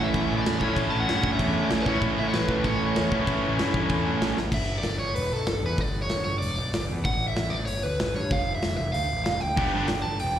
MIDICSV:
0, 0, Header, 1, 5, 480
1, 0, Start_track
1, 0, Tempo, 314301
1, 1184, Time_signature, 4, 2, 24, 8
1, 15869, End_track
2, 0, Start_track
2, 0, Title_t, "Overdriven electric guitar"
2, 0, Program_c, 0, 29
2, 56, Note_on_c, 0, 76, 113
2, 568, Note_off_c, 0, 76, 0
2, 574, Note_on_c, 0, 74, 98
2, 904, Note_off_c, 0, 74, 0
2, 910, Note_on_c, 0, 73, 85
2, 1148, Note_off_c, 0, 73, 0
2, 1381, Note_on_c, 0, 81, 101
2, 1525, Note_off_c, 0, 81, 0
2, 1525, Note_on_c, 0, 78, 90
2, 1758, Note_off_c, 0, 78, 0
2, 1777, Note_on_c, 0, 78, 87
2, 2021, Note_off_c, 0, 78, 0
2, 2027, Note_on_c, 0, 76, 93
2, 2233, Note_off_c, 0, 76, 0
2, 2251, Note_on_c, 0, 76, 89
2, 2499, Note_off_c, 0, 76, 0
2, 2499, Note_on_c, 0, 74, 102
2, 2771, Note_on_c, 0, 71, 69
2, 2805, Note_off_c, 0, 74, 0
2, 2843, Note_off_c, 0, 71, 0
2, 2844, Note_on_c, 0, 73, 81
2, 3071, Note_off_c, 0, 73, 0
2, 3348, Note_on_c, 0, 76, 100
2, 3479, Note_off_c, 0, 76, 0
2, 3479, Note_on_c, 0, 73, 81
2, 3573, Note_on_c, 0, 71, 81
2, 3589, Note_off_c, 0, 73, 0
2, 4048, Note_on_c, 0, 73, 93
2, 4065, Note_off_c, 0, 71, 0
2, 6380, Note_off_c, 0, 73, 0
2, 6934, Note_on_c, 0, 76, 87
2, 7299, Note_off_c, 0, 76, 0
2, 7311, Note_on_c, 0, 74, 80
2, 7615, Note_off_c, 0, 74, 0
2, 7621, Note_on_c, 0, 73, 74
2, 7857, Note_off_c, 0, 73, 0
2, 7857, Note_on_c, 0, 71, 85
2, 8137, Note_off_c, 0, 71, 0
2, 8137, Note_on_c, 0, 69, 81
2, 8626, Note_off_c, 0, 69, 0
2, 8642, Note_on_c, 0, 71, 69
2, 8866, Note_off_c, 0, 71, 0
2, 8866, Note_on_c, 0, 74, 98
2, 9189, Note_off_c, 0, 74, 0
2, 9195, Note_on_c, 0, 73, 81
2, 9518, Note_off_c, 0, 73, 0
2, 9536, Note_on_c, 0, 73, 84
2, 9747, Note_off_c, 0, 73, 0
2, 9753, Note_on_c, 0, 74, 94
2, 10451, Note_off_c, 0, 74, 0
2, 10769, Note_on_c, 0, 78, 102
2, 11113, Note_off_c, 0, 78, 0
2, 11119, Note_on_c, 0, 76, 83
2, 11455, Note_on_c, 0, 74, 87
2, 11499, Note_off_c, 0, 76, 0
2, 11682, Note_off_c, 0, 74, 0
2, 11688, Note_on_c, 0, 73, 93
2, 11962, Note_off_c, 0, 73, 0
2, 11962, Note_on_c, 0, 71, 97
2, 12451, Note_off_c, 0, 71, 0
2, 12459, Note_on_c, 0, 73, 86
2, 12706, Note_off_c, 0, 73, 0
2, 12707, Note_on_c, 0, 77, 94
2, 13047, Note_off_c, 0, 77, 0
2, 13053, Note_on_c, 0, 76, 89
2, 13382, Note_off_c, 0, 76, 0
2, 13400, Note_on_c, 0, 76, 98
2, 13625, Note_off_c, 0, 76, 0
2, 13631, Note_on_c, 0, 77, 99
2, 14093, Note_off_c, 0, 77, 0
2, 14124, Note_on_c, 0, 77, 103
2, 14363, Note_off_c, 0, 77, 0
2, 14363, Note_on_c, 0, 79, 93
2, 15299, Note_off_c, 0, 79, 0
2, 15305, Note_on_c, 0, 81, 91
2, 15575, Note_off_c, 0, 81, 0
2, 15582, Note_on_c, 0, 79, 100
2, 15869, Note_off_c, 0, 79, 0
2, 15869, End_track
3, 0, Start_track
3, 0, Title_t, "Distorted electric guitar"
3, 0, Program_c, 1, 30
3, 0, Note_on_c, 1, 45, 95
3, 0, Note_on_c, 1, 52, 104
3, 0, Note_on_c, 1, 57, 102
3, 0, Note_on_c, 1, 61, 100
3, 0, Note_on_c, 1, 64, 102
3, 913, Note_off_c, 1, 45, 0
3, 919, Note_on_c, 1, 45, 98
3, 935, Note_off_c, 1, 52, 0
3, 941, Note_on_c, 1, 52, 109
3, 952, Note_off_c, 1, 57, 0
3, 958, Note_on_c, 1, 57, 103
3, 962, Note_off_c, 1, 61, 0
3, 969, Note_off_c, 1, 64, 0
3, 969, Note_on_c, 1, 61, 113
3, 975, Note_on_c, 1, 64, 108
3, 2826, Note_off_c, 1, 45, 0
3, 2832, Note_on_c, 1, 45, 95
3, 2845, Note_off_c, 1, 52, 0
3, 2851, Note_on_c, 1, 52, 106
3, 2854, Note_off_c, 1, 57, 0
3, 2860, Note_on_c, 1, 57, 112
3, 2866, Note_off_c, 1, 61, 0
3, 2873, Note_on_c, 1, 61, 110
3, 2888, Note_off_c, 1, 64, 0
3, 2894, Note_on_c, 1, 64, 111
3, 4714, Note_off_c, 1, 45, 0
3, 4728, Note_off_c, 1, 52, 0
3, 4732, Note_on_c, 1, 45, 105
3, 4745, Note_off_c, 1, 57, 0
3, 4747, Note_on_c, 1, 52, 104
3, 4761, Note_off_c, 1, 61, 0
3, 4763, Note_on_c, 1, 57, 104
3, 4772, Note_off_c, 1, 64, 0
3, 4786, Note_on_c, 1, 61, 107
3, 4794, Note_on_c, 1, 64, 103
3, 6651, Note_off_c, 1, 45, 0
3, 6658, Note_off_c, 1, 52, 0
3, 6666, Note_off_c, 1, 57, 0
3, 6678, Note_off_c, 1, 61, 0
3, 6682, Note_off_c, 1, 64, 0
3, 14607, Note_on_c, 1, 43, 84
3, 14622, Note_on_c, 1, 50, 94
3, 14629, Note_on_c, 1, 55, 81
3, 14634, Note_on_c, 1, 59, 92
3, 14642, Note_on_c, 1, 62, 86
3, 14644, Note_on_c, 1, 67, 101
3, 14808, Note_off_c, 1, 43, 0
3, 14816, Note_off_c, 1, 50, 0
3, 14820, Note_off_c, 1, 55, 0
3, 14822, Note_off_c, 1, 59, 0
3, 14826, Note_off_c, 1, 62, 0
3, 14827, Note_off_c, 1, 67, 0
3, 14867, Note_on_c, 1, 43, 88
3, 14882, Note_on_c, 1, 50, 102
3, 14889, Note_on_c, 1, 55, 102
3, 14900, Note_on_c, 1, 62, 104
3, 14901, Note_on_c, 1, 59, 106
3, 14918, Note_on_c, 1, 67, 97
3, 15059, Note_off_c, 1, 43, 0
3, 15066, Note_off_c, 1, 50, 0
3, 15070, Note_off_c, 1, 55, 0
3, 15075, Note_off_c, 1, 62, 0
3, 15076, Note_off_c, 1, 59, 0
3, 15084, Note_off_c, 1, 67, 0
3, 15869, End_track
4, 0, Start_track
4, 0, Title_t, "Picked electric bass"
4, 0, Program_c, 2, 34
4, 224, Note_on_c, 2, 33, 98
4, 382, Note_off_c, 2, 33, 0
4, 476, Note_on_c, 2, 33, 102
4, 630, Note_off_c, 2, 33, 0
4, 711, Note_on_c, 2, 40, 99
4, 867, Note_off_c, 2, 40, 0
4, 935, Note_on_c, 2, 45, 98
4, 1096, Note_off_c, 2, 45, 0
4, 1175, Note_on_c, 2, 33, 89
4, 1335, Note_off_c, 2, 33, 0
4, 1444, Note_on_c, 2, 33, 94
4, 1594, Note_off_c, 2, 33, 0
4, 1682, Note_on_c, 2, 43, 83
4, 1990, Note_off_c, 2, 43, 0
4, 2136, Note_on_c, 2, 40, 105
4, 2452, Note_off_c, 2, 40, 0
4, 2622, Note_on_c, 2, 33, 95
4, 2778, Note_off_c, 2, 33, 0
4, 2853, Note_on_c, 2, 33, 105
4, 3011, Note_off_c, 2, 33, 0
4, 3093, Note_on_c, 2, 33, 96
4, 3251, Note_off_c, 2, 33, 0
4, 3349, Note_on_c, 2, 33, 92
4, 3501, Note_off_c, 2, 33, 0
4, 3587, Note_on_c, 2, 33, 84
4, 3740, Note_off_c, 2, 33, 0
4, 3803, Note_on_c, 2, 33, 88
4, 3963, Note_off_c, 2, 33, 0
4, 4052, Note_on_c, 2, 33, 102
4, 4209, Note_off_c, 2, 33, 0
4, 4304, Note_on_c, 2, 33, 96
4, 4457, Note_off_c, 2, 33, 0
4, 4557, Note_on_c, 2, 40, 95
4, 4705, Note_off_c, 2, 40, 0
4, 4765, Note_on_c, 2, 45, 92
4, 4923, Note_off_c, 2, 45, 0
4, 5006, Note_on_c, 2, 33, 93
4, 5164, Note_off_c, 2, 33, 0
4, 5267, Note_on_c, 2, 33, 93
4, 5417, Note_off_c, 2, 33, 0
4, 5502, Note_on_c, 2, 43, 91
4, 5812, Note_off_c, 2, 43, 0
4, 5963, Note_on_c, 2, 40, 94
4, 6279, Note_off_c, 2, 40, 0
4, 6437, Note_on_c, 2, 33, 85
4, 6597, Note_off_c, 2, 33, 0
4, 6679, Note_on_c, 2, 33, 85
4, 6838, Note_off_c, 2, 33, 0
4, 6905, Note_on_c, 2, 31, 92
4, 7326, Note_off_c, 2, 31, 0
4, 7396, Note_on_c, 2, 31, 79
4, 7606, Note_off_c, 2, 31, 0
4, 7639, Note_on_c, 2, 31, 85
4, 7848, Note_off_c, 2, 31, 0
4, 7883, Note_on_c, 2, 28, 89
4, 8090, Note_off_c, 2, 28, 0
4, 8120, Note_on_c, 2, 35, 90
4, 8329, Note_off_c, 2, 35, 0
4, 8358, Note_on_c, 2, 31, 94
4, 8568, Note_off_c, 2, 31, 0
4, 8605, Note_on_c, 2, 40, 87
4, 8813, Note_off_c, 2, 40, 0
4, 8839, Note_on_c, 2, 31, 95
4, 9257, Note_off_c, 2, 31, 0
4, 9319, Note_on_c, 2, 31, 89
4, 9530, Note_off_c, 2, 31, 0
4, 9574, Note_on_c, 2, 31, 83
4, 9779, Note_off_c, 2, 31, 0
4, 9811, Note_on_c, 2, 28, 103
4, 10018, Note_off_c, 2, 28, 0
4, 10047, Note_on_c, 2, 35, 101
4, 10255, Note_off_c, 2, 35, 0
4, 10281, Note_on_c, 2, 31, 94
4, 10493, Note_off_c, 2, 31, 0
4, 10540, Note_on_c, 2, 40, 88
4, 10744, Note_off_c, 2, 40, 0
4, 10767, Note_on_c, 2, 33, 86
4, 11184, Note_off_c, 2, 33, 0
4, 11253, Note_on_c, 2, 33, 92
4, 11461, Note_off_c, 2, 33, 0
4, 11502, Note_on_c, 2, 33, 89
4, 11706, Note_off_c, 2, 33, 0
4, 11722, Note_on_c, 2, 31, 94
4, 11935, Note_off_c, 2, 31, 0
4, 11964, Note_on_c, 2, 38, 86
4, 12177, Note_off_c, 2, 38, 0
4, 12218, Note_on_c, 2, 33, 93
4, 12425, Note_off_c, 2, 33, 0
4, 12439, Note_on_c, 2, 43, 95
4, 12696, Note_on_c, 2, 29, 96
4, 12719, Note_off_c, 2, 43, 0
4, 13112, Note_off_c, 2, 29, 0
4, 13200, Note_on_c, 2, 29, 91
4, 13399, Note_off_c, 2, 29, 0
4, 13434, Note_on_c, 2, 29, 84
4, 13636, Note_off_c, 2, 29, 0
4, 13670, Note_on_c, 2, 38, 97
4, 13874, Note_off_c, 2, 38, 0
4, 13925, Note_on_c, 2, 33, 86
4, 14122, Note_off_c, 2, 33, 0
4, 14153, Note_on_c, 2, 29, 92
4, 14356, Note_off_c, 2, 29, 0
4, 14413, Note_on_c, 2, 38, 85
4, 14608, Note_off_c, 2, 38, 0
4, 14626, Note_on_c, 2, 31, 84
4, 15040, Note_off_c, 2, 31, 0
4, 15119, Note_on_c, 2, 31, 77
4, 15321, Note_off_c, 2, 31, 0
4, 15378, Note_on_c, 2, 31, 84
4, 15572, Note_off_c, 2, 31, 0
4, 15619, Note_on_c, 2, 28, 91
4, 15813, Note_off_c, 2, 28, 0
4, 15869, End_track
5, 0, Start_track
5, 0, Title_t, "Drums"
5, 217, Note_on_c, 9, 36, 106
5, 238, Note_on_c, 9, 49, 63
5, 370, Note_off_c, 9, 36, 0
5, 391, Note_off_c, 9, 49, 0
5, 704, Note_on_c, 9, 49, 71
5, 710, Note_on_c, 9, 38, 127
5, 857, Note_off_c, 9, 49, 0
5, 863, Note_off_c, 9, 38, 0
5, 930, Note_on_c, 9, 36, 85
5, 1082, Note_off_c, 9, 36, 0
5, 1168, Note_on_c, 9, 36, 88
5, 1177, Note_on_c, 9, 49, 67
5, 1321, Note_off_c, 9, 36, 0
5, 1329, Note_off_c, 9, 49, 0
5, 1661, Note_on_c, 9, 49, 59
5, 1667, Note_on_c, 9, 38, 106
5, 1814, Note_off_c, 9, 49, 0
5, 1820, Note_off_c, 9, 38, 0
5, 1886, Note_on_c, 9, 36, 97
5, 2039, Note_off_c, 9, 36, 0
5, 2128, Note_on_c, 9, 36, 98
5, 2142, Note_on_c, 9, 49, 68
5, 2281, Note_off_c, 9, 36, 0
5, 2294, Note_off_c, 9, 49, 0
5, 2601, Note_on_c, 9, 49, 69
5, 2608, Note_on_c, 9, 38, 120
5, 2754, Note_off_c, 9, 49, 0
5, 2760, Note_off_c, 9, 38, 0
5, 2844, Note_on_c, 9, 36, 87
5, 2996, Note_off_c, 9, 36, 0
5, 3082, Note_on_c, 9, 36, 81
5, 3083, Note_on_c, 9, 49, 60
5, 3234, Note_off_c, 9, 36, 0
5, 3235, Note_off_c, 9, 49, 0
5, 3565, Note_on_c, 9, 49, 57
5, 3572, Note_on_c, 9, 38, 106
5, 3718, Note_off_c, 9, 49, 0
5, 3724, Note_off_c, 9, 38, 0
5, 3796, Note_on_c, 9, 36, 93
5, 3949, Note_off_c, 9, 36, 0
5, 4037, Note_on_c, 9, 36, 98
5, 4047, Note_on_c, 9, 49, 62
5, 4190, Note_off_c, 9, 36, 0
5, 4200, Note_off_c, 9, 49, 0
5, 4518, Note_on_c, 9, 49, 68
5, 4524, Note_on_c, 9, 38, 114
5, 4671, Note_off_c, 9, 49, 0
5, 4677, Note_off_c, 9, 38, 0
5, 4761, Note_on_c, 9, 36, 91
5, 4914, Note_off_c, 9, 36, 0
5, 4999, Note_on_c, 9, 36, 93
5, 5010, Note_on_c, 9, 49, 66
5, 5152, Note_off_c, 9, 36, 0
5, 5163, Note_off_c, 9, 49, 0
5, 5483, Note_on_c, 9, 49, 58
5, 5489, Note_on_c, 9, 38, 100
5, 5636, Note_off_c, 9, 49, 0
5, 5642, Note_off_c, 9, 38, 0
5, 5714, Note_on_c, 9, 36, 94
5, 5867, Note_off_c, 9, 36, 0
5, 5946, Note_on_c, 9, 49, 66
5, 5953, Note_on_c, 9, 36, 104
5, 6099, Note_off_c, 9, 49, 0
5, 6106, Note_off_c, 9, 36, 0
5, 6438, Note_on_c, 9, 49, 63
5, 6444, Note_on_c, 9, 38, 113
5, 6591, Note_off_c, 9, 49, 0
5, 6597, Note_off_c, 9, 38, 0
5, 6676, Note_on_c, 9, 38, 69
5, 6829, Note_off_c, 9, 38, 0
5, 6901, Note_on_c, 9, 36, 99
5, 6905, Note_on_c, 9, 57, 106
5, 7054, Note_off_c, 9, 36, 0
5, 7058, Note_off_c, 9, 57, 0
5, 7377, Note_on_c, 9, 46, 51
5, 7383, Note_on_c, 9, 38, 94
5, 7529, Note_off_c, 9, 46, 0
5, 7536, Note_off_c, 9, 38, 0
5, 7877, Note_on_c, 9, 46, 62
5, 8030, Note_off_c, 9, 46, 0
5, 8346, Note_on_c, 9, 46, 61
5, 8352, Note_on_c, 9, 38, 119
5, 8499, Note_off_c, 9, 46, 0
5, 8505, Note_off_c, 9, 38, 0
5, 8829, Note_on_c, 9, 36, 93
5, 8833, Note_on_c, 9, 46, 58
5, 8982, Note_off_c, 9, 36, 0
5, 8985, Note_off_c, 9, 46, 0
5, 9307, Note_on_c, 9, 46, 54
5, 9313, Note_on_c, 9, 38, 95
5, 9460, Note_off_c, 9, 46, 0
5, 9466, Note_off_c, 9, 38, 0
5, 9808, Note_on_c, 9, 46, 67
5, 9961, Note_off_c, 9, 46, 0
5, 10286, Note_on_c, 9, 46, 63
5, 10292, Note_on_c, 9, 38, 110
5, 10438, Note_off_c, 9, 46, 0
5, 10445, Note_off_c, 9, 38, 0
5, 10765, Note_on_c, 9, 36, 102
5, 10773, Note_on_c, 9, 46, 50
5, 10918, Note_off_c, 9, 36, 0
5, 10926, Note_off_c, 9, 46, 0
5, 11243, Note_on_c, 9, 46, 54
5, 11249, Note_on_c, 9, 38, 97
5, 11396, Note_off_c, 9, 46, 0
5, 11402, Note_off_c, 9, 38, 0
5, 11719, Note_on_c, 9, 46, 59
5, 11872, Note_off_c, 9, 46, 0
5, 12211, Note_on_c, 9, 46, 64
5, 12217, Note_on_c, 9, 38, 115
5, 12363, Note_off_c, 9, 46, 0
5, 12369, Note_off_c, 9, 38, 0
5, 12686, Note_on_c, 9, 46, 54
5, 12690, Note_on_c, 9, 36, 111
5, 12839, Note_off_c, 9, 46, 0
5, 12843, Note_off_c, 9, 36, 0
5, 13169, Note_on_c, 9, 46, 52
5, 13176, Note_on_c, 9, 38, 98
5, 13322, Note_off_c, 9, 46, 0
5, 13328, Note_off_c, 9, 38, 0
5, 13656, Note_on_c, 9, 46, 56
5, 13809, Note_off_c, 9, 46, 0
5, 14135, Note_on_c, 9, 46, 60
5, 14142, Note_on_c, 9, 38, 114
5, 14288, Note_off_c, 9, 46, 0
5, 14294, Note_off_c, 9, 38, 0
5, 14617, Note_on_c, 9, 57, 94
5, 14621, Note_on_c, 9, 36, 104
5, 14770, Note_off_c, 9, 57, 0
5, 14773, Note_off_c, 9, 36, 0
5, 15083, Note_on_c, 9, 46, 51
5, 15089, Note_on_c, 9, 38, 101
5, 15236, Note_off_c, 9, 46, 0
5, 15242, Note_off_c, 9, 38, 0
5, 15568, Note_on_c, 9, 46, 57
5, 15721, Note_off_c, 9, 46, 0
5, 15869, End_track
0, 0, End_of_file